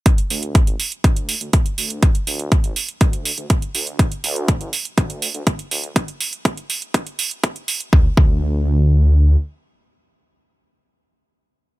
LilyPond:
<<
  \new Staff \with { instrumentName = "Detuned saw bass" } { \clef bass \time 4/4 \key c \mixolydian \tempo 4 = 122 r8 d,8 r16 a,,16 r8 d,8 r16 d,16 r8 d,8 | r8 d,8 r16 a,,16 r8 d,8 r16 d,16 r8 d,8 | r8 d,8 r16 a,,16 r8 d,8 r16 d,16 r8 d,16 r16 | r1 |
d,16 r16 d,2~ d,8 r4 | r1 | }
  \new DrumStaff \with { instrumentName = "Drums" } \drummode { \time 4/4 <hh bd>16 hh16 hho16 hh16 <hh bd>16 hh16 hho16 hh16 <hh bd>16 hh16 hho16 hh16 <hh bd>16 hh16 hho16 hh16 | <hh bd>16 hh16 hho16 hh16 <hh bd>16 hh16 hho16 hh16 <hh bd>16 hh16 hho16 hh16 <hh bd>16 hh16 hho16 hh16 | <hh bd>16 hh16 hho16 hh16 <hh bd>16 hh16 hho16 hh16 <hh bd>16 hh16 hho16 hh16 <hh bd>16 hh16 hho16 hh16 | <hh bd>16 hh16 hho16 hh16 <hh bd>16 hh16 hho16 hh16 <hh bd>16 hh16 hho16 hh16 <hh bd>16 hh16 hho16 hh16 |
bd8 bd8 r4 r4 r4 | r4 r4 r4 r4 | }
>>